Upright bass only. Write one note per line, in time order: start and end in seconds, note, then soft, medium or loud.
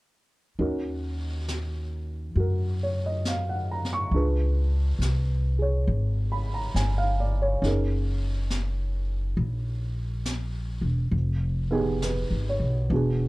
0.59 2.32 D#2 medium
2.35 4.08 F#2 medium
4.11 4.96 C#2 medium
4.99 5.83 C2 soft
5.87 6.71 G#1 medium
6.74 7.59 G1 medium
7.62 9.33 F#1 medium
9.37 10.79 A#1 medium
10.81 11.10 E1 soft
11.11 12.26 F1 medium
12.31 12.59 G#1 soft
12.60 12.88 B1 soft
12.90 13.28 E1 medium